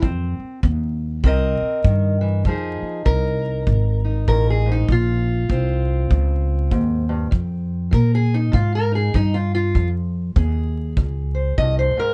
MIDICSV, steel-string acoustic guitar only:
0, 0, Header, 1, 2, 480
1, 0, Start_track
1, 0, Key_signature, -4, "minor"
1, 0, Tempo, 607903
1, 24, Time_signature, 4, 2, 24, 8
1, 9584, End_track
2, 0, Start_track
2, 0, Title_t, "Steel-string acoustic guitar"
2, 0, Program_c, 0, 25
2, 14, Note_on_c, 0, 41, 82
2, 20, Note_on_c, 0, 60, 53
2, 461, Note_off_c, 0, 41, 0
2, 492, Note_off_c, 0, 60, 0
2, 501, Note_on_c, 0, 60, 69
2, 944, Note_off_c, 0, 60, 0
2, 978, Note_on_c, 0, 48, 85
2, 984, Note_on_c, 0, 60, 77
2, 996, Note_on_c, 0, 70, 73
2, 1006, Note_on_c, 0, 75, 80
2, 1422, Note_off_c, 0, 48, 0
2, 1458, Note_off_c, 0, 60, 0
2, 1462, Note_on_c, 0, 51, 57
2, 1742, Note_off_c, 0, 51, 0
2, 1745, Note_on_c, 0, 52, 65
2, 1926, Note_off_c, 0, 70, 0
2, 1930, Note_off_c, 0, 75, 0
2, 1936, Note_off_c, 0, 52, 0
2, 1939, Note_on_c, 0, 41, 78
2, 1944, Note_on_c, 0, 53, 49
2, 1956, Note_on_c, 0, 63, 52
2, 1963, Note_on_c, 0, 68, 49
2, 2382, Note_off_c, 0, 41, 0
2, 2407, Note_off_c, 0, 53, 0
2, 2409, Note_off_c, 0, 68, 0
2, 2410, Note_on_c, 0, 53, 72
2, 2413, Note_on_c, 0, 70, 102
2, 2858, Note_off_c, 0, 53, 0
2, 2896, Note_on_c, 0, 48, 76
2, 3185, Note_off_c, 0, 63, 0
2, 3195, Note_on_c, 0, 63, 46
2, 3340, Note_off_c, 0, 48, 0
2, 3373, Note_off_c, 0, 70, 0
2, 3379, Note_on_c, 0, 43, 62
2, 3383, Note_on_c, 0, 70, 89
2, 3541, Note_off_c, 0, 70, 0
2, 3555, Note_on_c, 0, 68, 77
2, 3673, Note_off_c, 0, 43, 0
2, 3680, Note_on_c, 0, 44, 62
2, 3700, Note_off_c, 0, 63, 0
2, 3707, Note_off_c, 0, 68, 0
2, 3723, Note_on_c, 0, 63, 84
2, 3862, Note_off_c, 0, 44, 0
2, 3867, Note_on_c, 0, 46, 74
2, 3871, Note_off_c, 0, 63, 0
2, 3885, Note_on_c, 0, 65, 101
2, 4306, Note_off_c, 0, 46, 0
2, 4348, Note_on_c, 0, 60, 52
2, 4820, Note_on_c, 0, 46, 77
2, 5262, Note_off_c, 0, 46, 0
2, 5298, Note_on_c, 0, 44, 59
2, 5312, Note_off_c, 0, 65, 0
2, 5592, Note_off_c, 0, 44, 0
2, 5599, Note_on_c, 0, 43, 62
2, 5768, Note_off_c, 0, 43, 0
2, 5772, Note_on_c, 0, 41, 77
2, 6218, Note_off_c, 0, 41, 0
2, 6247, Note_on_c, 0, 53, 69
2, 6269, Note_on_c, 0, 70, 98
2, 6424, Note_off_c, 0, 70, 0
2, 6433, Note_on_c, 0, 68, 90
2, 6584, Note_off_c, 0, 60, 0
2, 6586, Note_off_c, 0, 68, 0
2, 6587, Note_on_c, 0, 63, 81
2, 6696, Note_off_c, 0, 53, 0
2, 6725, Note_on_c, 0, 48, 77
2, 6743, Note_off_c, 0, 63, 0
2, 6743, Note_on_c, 0, 65, 104
2, 6901, Note_off_c, 0, 65, 0
2, 6910, Note_on_c, 0, 70, 99
2, 7041, Note_on_c, 0, 63, 43
2, 7065, Note_off_c, 0, 70, 0
2, 7068, Note_on_c, 0, 68, 89
2, 7175, Note_off_c, 0, 48, 0
2, 7215, Note_off_c, 0, 63, 0
2, 7222, Note_on_c, 0, 53, 56
2, 7224, Note_off_c, 0, 68, 0
2, 7227, Note_on_c, 0, 63, 93
2, 7376, Note_on_c, 0, 65, 83
2, 7382, Note_off_c, 0, 63, 0
2, 7529, Note_off_c, 0, 65, 0
2, 7538, Note_on_c, 0, 65, 88
2, 7664, Note_off_c, 0, 53, 0
2, 7703, Note_on_c, 0, 41, 82
2, 7797, Note_off_c, 0, 65, 0
2, 8145, Note_off_c, 0, 41, 0
2, 8179, Note_on_c, 0, 60, 68
2, 8191, Note_on_c, 0, 68, 52
2, 8623, Note_off_c, 0, 60, 0
2, 8666, Note_on_c, 0, 41, 77
2, 8958, Note_on_c, 0, 72, 48
2, 9107, Note_off_c, 0, 41, 0
2, 9139, Note_off_c, 0, 72, 0
2, 9142, Note_on_c, 0, 75, 107
2, 9151, Note_on_c, 0, 43, 59
2, 9303, Note_off_c, 0, 75, 0
2, 9307, Note_on_c, 0, 72, 84
2, 9441, Note_off_c, 0, 43, 0
2, 9453, Note_on_c, 0, 44, 59
2, 9465, Note_off_c, 0, 72, 0
2, 9467, Note_off_c, 0, 68, 0
2, 9471, Note_on_c, 0, 70, 92
2, 9584, Note_off_c, 0, 44, 0
2, 9584, Note_off_c, 0, 70, 0
2, 9584, End_track
0, 0, End_of_file